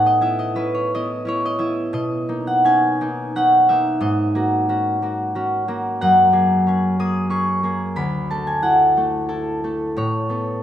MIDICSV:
0, 0, Header, 1, 2, 480
1, 0, Start_track
1, 0, Tempo, 703400
1, 870, Tempo, 683371
1, 1341, Time_signature, 3, 2, 24, 8
1, 3270, Tempo, 653595
1, 5670, Tempo, 668896
1, 7585, End_track
2, 0, Start_track
2, 0, Title_t, "Harp"
2, 0, Program_c, 0, 46
2, 0, Note_on_c, 0, 45, 54
2, 0, Note_on_c, 0, 59, 38
2, 0, Note_on_c, 0, 61, 43
2, 0, Note_on_c, 0, 78, 71
2, 0, Note_on_c, 0, 80, 77
2, 43, Note_on_c, 0, 75, 67
2, 144, Note_off_c, 0, 59, 0
2, 144, Note_on_c, 0, 64, 49
2, 150, Note_on_c, 0, 76, 68
2, 152, Note_on_c, 0, 59, 42
2, 242, Note_off_c, 0, 75, 0
2, 251, Note_off_c, 0, 80, 0
2, 265, Note_on_c, 0, 75, 63
2, 370, Note_off_c, 0, 61, 0
2, 377, Note_on_c, 0, 61, 44
2, 380, Note_off_c, 0, 64, 0
2, 381, Note_on_c, 0, 71, 70
2, 388, Note_on_c, 0, 64, 46
2, 474, Note_off_c, 0, 75, 0
2, 508, Note_on_c, 0, 73, 62
2, 591, Note_off_c, 0, 71, 0
2, 637, Note_off_c, 0, 64, 0
2, 642, Note_off_c, 0, 59, 0
2, 643, Note_on_c, 0, 64, 44
2, 646, Note_on_c, 0, 75, 74
2, 650, Note_on_c, 0, 59, 41
2, 715, Note_off_c, 0, 73, 0
2, 851, Note_off_c, 0, 61, 0
2, 854, Note_on_c, 0, 61, 47
2, 857, Note_off_c, 0, 64, 0
2, 865, Note_on_c, 0, 64, 54
2, 876, Note_on_c, 0, 73, 81
2, 988, Note_off_c, 0, 75, 0
2, 996, Note_on_c, 0, 75, 73
2, 1081, Note_off_c, 0, 76, 0
2, 1086, Note_off_c, 0, 59, 0
2, 1087, Note_off_c, 0, 64, 0
2, 1089, Note_on_c, 0, 76, 67
2, 1093, Note_on_c, 0, 59, 38
2, 1097, Note_on_c, 0, 64, 50
2, 1191, Note_off_c, 0, 75, 0
2, 1330, Note_on_c, 0, 47, 59
2, 1334, Note_on_c, 0, 75, 75
2, 1352, Note_off_c, 0, 76, 0
2, 1355, Note_off_c, 0, 64, 0
2, 1362, Note_off_c, 0, 45, 0
2, 1581, Note_on_c, 0, 58, 44
2, 1584, Note_on_c, 0, 63, 48
2, 1703, Note_off_c, 0, 78, 0
2, 1711, Note_on_c, 0, 78, 73
2, 1825, Note_off_c, 0, 61, 0
2, 1831, Note_on_c, 0, 61, 50
2, 1832, Note_off_c, 0, 63, 0
2, 1838, Note_on_c, 0, 80, 76
2, 1841, Note_on_c, 0, 63, 48
2, 1919, Note_off_c, 0, 78, 0
2, 2080, Note_off_c, 0, 58, 0
2, 2085, Note_off_c, 0, 63, 0
2, 2088, Note_on_c, 0, 58, 47
2, 2094, Note_on_c, 0, 63, 47
2, 2325, Note_off_c, 0, 61, 0
2, 2331, Note_off_c, 0, 63, 0
2, 2332, Note_on_c, 0, 61, 49
2, 2335, Note_on_c, 0, 78, 76
2, 2339, Note_on_c, 0, 63, 53
2, 2564, Note_off_c, 0, 58, 0
2, 2565, Note_off_c, 0, 63, 0
2, 2566, Note_on_c, 0, 76, 79
2, 2571, Note_on_c, 0, 58, 47
2, 2575, Note_on_c, 0, 63, 52
2, 2649, Note_off_c, 0, 80, 0
2, 2783, Note_off_c, 0, 75, 0
2, 2788, Note_on_c, 0, 44, 68
2, 2792, Note_on_c, 0, 75, 74
2, 2805, Note_off_c, 0, 47, 0
2, 2967, Note_off_c, 0, 76, 0
2, 3024, Note_off_c, 0, 58, 0
2, 3030, Note_on_c, 0, 58, 52
2, 3036, Note_on_c, 0, 66, 52
2, 3259, Note_off_c, 0, 61, 0
2, 3263, Note_off_c, 0, 66, 0
2, 3267, Note_on_c, 0, 61, 47
2, 3272, Note_on_c, 0, 66, 53
2, 3506, Note_off_c, 0, 58, 0
2, 3508, Note_off_c, 0, 66, 0
2, 3512, Note_on_c, 0, 58, 49
2, 3519, Note_on_c, 0, 66, 49
2, 3631, Note_off_c, 0, 73, 0
2, 3746, Note_off_c, 0, 66, 0
2, 3750, Note_off_c, 0, 61, 0
2, 3755, Note_on_c, 0, 66, 54
2, 3759, Note_on_c, 0, 61, 52
2, 3858, Note_off_c, 0, 59, 0
2, 3986, Note_off_c, 0, 66, 0
2, 3989, Note_off_c, 0, 58, 0
2, 3995, Note_on_c, 0, 66, 45
2, 3998, Note_on_c, 0, 58, 52
2, 4232, Note_off_c, 0, 78, 0
2, 4241, Note_on_c, 0, 78, 86
2, 4245, Note_on_c, 0, 42, 63
2, 4253, Note_off_c, 0, 44, 0
2, 4254, Note_off_c, 0, 75, 0
2, 4266, Note_off_c, 0, 63, 0
2, 4464, Note_off_c, 0, 58, 0
2, 4471, Note_on_c, 0, 58, 52
2, 4476, Note_on_c, 0, 68, 54
2, 4713, Note_off_c, 0, 61, 0
2, 4722, Note_on_c, 0, 61, 46
2, 4723, Note_off_c, 0, 68, 0
2, 4732, Note_on_c, 0, 68, 54
2, 4953, Note_off_c, 0, 58, 0
2, 4957, Note_off_c, 0, 68, 0
2, 4960, Note_on_c, 0, 58, 43
2, 4963, Note_on_c, 0, 87, 82
2, 4966, Note_on_c, 0, 68, 49
2, 5176, Note_off_c, 0, 61, 0
2, 5183, Note_on_c, 0, 61, 46
2, 5184, Note_off_c, 0, 68, 0
2, 5187, Note_on_c, 0, 85, 79
2, 5193, Note_on_c, 0, 68, 55
2, 5357, Note_off_c, 0, 87, 0
2, 5420, Note_off_c, 0, 58, 0
2, 5428, Note_off_c, 0, 68, 0
2, 5429, Note_on_c, 0, 58, 45
2, 5437, Note_on_c, 0, 68, 45
2, 5669, Note_on_c, 0, 38, 58
2, 5673, Note_on_c, 0, 83, 85
2, 5685, Note_off_c, 0, 61, 0
2, 5685, Note_off_c, 0, 85, 0
2, 5690, Note_off_c, 0, 58, 0
2, 5694, Note_off_c, 0, 68, 0
2, 5695, Note_off_c, 0, 42, 0
2, 5918, Note_on_c, 0, 81, 72
2, 5922, Note_on_c, 0, 57, 41
2, 5926, Note_on_c, 0, 69, 48
2, 6036, Note_on_c, 0, 80, 65
2, 6076, Note_off_c, 0, 83, 0
2, 6138, Note_off_c, 0, 78, 0
2, 6144, Note_off_c, 0, 69, 0
2, 6145, Note_on_c, 0, 64, 46
2, 6149, Note_on_c, 0, 78, 73
2, 6153, Note_on_c, 0, 69, 46
2, 6232, Note_off_c, 0, 80, 0
2, 6386, Note_off_c, 0, 69, 0
2, 6390, Note_off_c, 0, 57, 0
2, 6395, Note_on_c, 0, 69, 47
2, 6398, Note_on_c, 0, 57, 42
2, 6614, Note_off_c, 0, 69, 0
2, 6617, Note_off_c, 0, 64, 0
2, 6622, Note_on_c, 0, 69, 55
2, 6625, Note_on_c, 0, 64, 47
2, 6832, Note_off_c, 0, 66, 0
2, 6866, Note_off_c, 0, 69, 0
2, 6869, Note_off_c, 0, 57, 0
2, 6875, Note_on_c, 0, 57, 45
2, 6877, Note_on_c, 0, 69, 46
2, 7109, Note_on_c, 0, 45, 61
2, 7116, Note_on_c, 0, 73, 70
2, 7124, Note_off_c, 0, 38, 0
2, 7124, Note_off_c, 0, 78, 0
2, 7342, Note_off_c, 0, 69, 0
2, 7344, Note_on_c, 0, 59, 45
2, 7351, Note_on_c, 0, 69, 44
2, 7574, Note_off_c, 0, 64, 0
2, 7585, Note_off_c, 0, 45, 0
2, 7585, Note_off_c, 0, 57, 0
2, 7585, Note_off_c, 0, 59, 0
2, 7585, Note_off_c, 0, 69, 0
2, 7585, Note_off_c, 0, 73, 0
2, 7585, Note_off_c, 0, 81, 0
2, 7585, End_track
0, 0, End_of_file